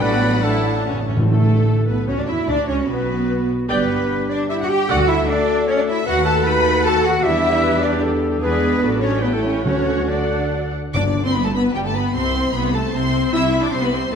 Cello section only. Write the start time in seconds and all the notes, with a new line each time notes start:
0.01 B3
0.44 A3
1.27 A3
1.88 B3
2.08 C#4
2.20 D4
2.29 E4
2.49 D4
2.69 C#4
2.89 B3
3.70 B3
4.31 D4
4.51 E4
4.63 F#4
4.70 G4
4.89 F#4
5.09 E4
5.29 D4
5.68 C#4
5.79 D4
5.88 E4
6.07 F#4
6.26 A4
6.46 B4
6.85 A4
7.05 F#4
7.24 E4
7.82 D4
8.41 B3
9.02 C#4
9.23 B3
9.35 A3
9.44 C#4
9.66 C#4
10.09 D4
10.95 G2
11.35 G2
11.75 G2
12.14 C3
12.54 C3
12.93 C3
13.32 C3
13.73 C3